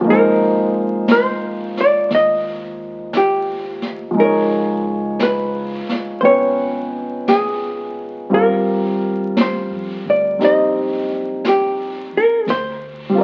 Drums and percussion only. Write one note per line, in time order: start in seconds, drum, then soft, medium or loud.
0.06 brush sweep soft
1.08 brush sweep soft
1.08 snare soft
1.08 hi-hat pedal soft
1.77 snare soft
2.10 brush sweep soft
2.10 snare soft
3.13 brush sweep soft
3.13 snare soft
3.13 hi-hat pedal soft
3.82 snare soft
4.16 brush sweep soft
5.19 brush sweep soft
5.19 snare soft
5.19 hi-hat pedal medium
5.89 snare soft
6.24 brush sweep soft
7.28 brush sweep soft
7.28 snare soft
7.28 hi-hat pedal soft
8.33 brush sweep soft
9.37 brush sweep soft
9.37 snare soft
9.37 hi-hat pedal soft
10.40 brush sweep soft
10.40 snare soft
11.44 brush sweep soft
11.44 snare soft
11.44 hi-hat pedal soft
12.47 brush sweep soft
12.47 snare soft